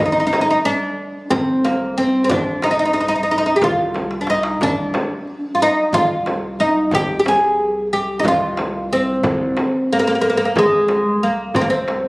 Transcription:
0.00 upright bass C2, darbuka dum
0.06 oud D#4
0.12 oud D#4
0.20 oud D#4
0.27 oud D#4
0.33 oud D#4, darbuka tek, frame drum
0.41 oud D#4
0.50 oud D#4
0.65 oud D4, darbuka ka
1.31 upright bass C2, oud C4, darbuka dum, frame drum
1.64 oud A#3, darbuka tek, frame drum
1.98 oud C4, darbuka ka
2.24 oud C4
2.29 upright bass C2, oud D4, darbuka dum, frame drum
2.62 oud D#4, darbuka tek, frame drum
2.71 oud D#4
2.79 oud D#4
2.85 oud D#4
2.93 oud D#4, darbuka ka
3.00 oud D#4
3.08 oud D#4
3.16 oud D#4
3.23 oud D#4
3.29 oud D#4, darbuka ka
3.38 oud D#4
3.46 oud D#4
3.56 oud G4
3.61 upright bass C2, oud F4, darbuka dum, frame drum
3.94 darbuka tek, frame drum
4.11 darbuka ka
4.21 oud D4
4.27 oud D#4, darbuka tek
4.43 darbuka ka
4.61 upright bass C2, oud D4, darbuka dum, frame drum
4.94 darbuka tek, frame drum
5.28 darbuka ka
5.55 oud F4
5.61 oud D#4, darbuka ka
5.93 upright bass C2, oud F4, darbuka dum, frame drum
6.26 darbuka tek, frame drum
6.60 oud D#4
6.91 upright bass C2, oud G4, darbuka dum, frame drum
7.19 oud G4
7.26 oud G#4, darbuka tek, frame drum
7.59 darbuka ka
7.92 oud G4, darbuka ka
8.19 oud D#4
8.24 upright bass C2, darbuka dum, frame drum
8.28 oud F4
8.57 darbuka tek, frame drum
8.90 oud C4, darbuka ka
9.23 upright bass C2, darbuka dum, frame drum
9.57 darbuka tek, frame drum
9.90 oud A#3, darbuka ka
9.99 oud A#3
10.07 oud A#3
10.15 oud A#3
10.21 oud A#3, darbuka ka
10.30 oud A#3
10.37 oud A#3
10.45 oud A#3
10.55 upright bass C2, oud G#3, darbuka dum, frame drum
10.88 darbuka tek, frame drum
11.21 oud A#3, darbuka ka
11.54 upright bass C2, oud C4, darbuka dum, frame drum
11.61 oud A#3
11.70 oud C4
11.88 darbuka tek, frame drum

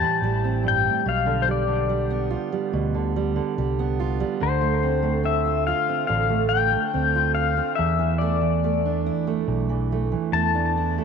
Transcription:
Already playing: steel-string acoustic guitar A2 G3 C4 G4, pedal steel guitar A5
0.01 steel-string acoustic guitar E3
0.22 fingered electric bass A1, steel-string acoustic guitar G3
0.44 steel-string acoustic guitar C4
0.64 steel-string acoustic guitar G2
0.68 pedal steel guitar G5
0.85 steel-string acoustic guitar A2
1.06 fingered electric bass B1, steel-string acoustic guitar B2, pedal steel guitar F5
1.26 steel-string acoustic guitar D3
1.42 pedal steel guitar C5
1.48 steel-string acoustic guitar G3, pedal steel guitar D5
1.67 steel-string acoustic guitar D3
1.89 steel-string acoustic guitar G3
2.10 steel-string acoustic guitar B3
2.30 steel-string acoustic guitar F4
2.52 steel-string acoustic guitar G3
2.73 fingered electric bass D2, steel-string acoustic guitar B2
2.94 steel-string acoustic guitar D3
3.16 steel-string acoustic guitar G3
3.36 steel-string acoustic guitar D3
3.58 fingered electric bass C2, steel-string acoustic guitar G3
3.79 steel-string acoustic guitar B3
4.00 steel-string acoustic guitar F4
4.20 steel-string acoustic guitar G3
4.40 fingered electric bass D2, steel-string acoustic guitar D3, pedal steel guitar C5
4.61 steel-string acoustic guitar A3
4.83 steel-string acoustic guitar C4
5.02 steel-string acoustic guitar A3
5.23 steel-string acoustic guitar C4, pedal steel guitar E5
5.45 steel-string acoustic guitar F4
5.67 steel-string acoustic guitar F4, pedal steel guitar F5
5.89 steel-string acoustic guitar C4
6.07 fingered electric bass A1, steel-string acoustic guitar D3, pedal steel guitar F5
6.30 steel-string acoustic guitar A3
6.49 steel-string acoustic guitar C4, pedal steel guitar G5
6.72 steel-string acoustic guitar A3
6.94 fingered electric bass D2, steel-string acoustic guitar C4
7.15 steel-string acoustic guitar F4
7.35 steel-string acoustic guitar F4, pedal steel guitar F5
7.57 steel-string acoustic guitar C4
7.75 steel-string acoustic guitar E2, fingered electric bass E2, pedal steel guitar E5
7.99 steel-string acoustic guitar E3
8.18 steel-string acoustic guitar A3, pedal steel guitar D5
8.42 steel-string acoustic guitar E3
8.64 steel-string acoustic guitar A3
8.85 steel-string acoustic guitar D4
9.06 steel-string acoustic guitar E4
9.27 steel-string acoustic guitar A3
9.47 fingered electric bass B1, steel-string acoustic guitar E2
9.69 steel-string acoustic guitar E3
9.92 steel-string acoustic guitar A3
10.12 steel-string acoustic guitar E3
10.32 fingered electric bass E2, steel-string acoustic guitar A3, pedal steel guitar A5
10.55 steel-string acoustic guitar D4
10.77 steel-string acoustic guitar E4
10.98 steel-string acoustic guitar A3

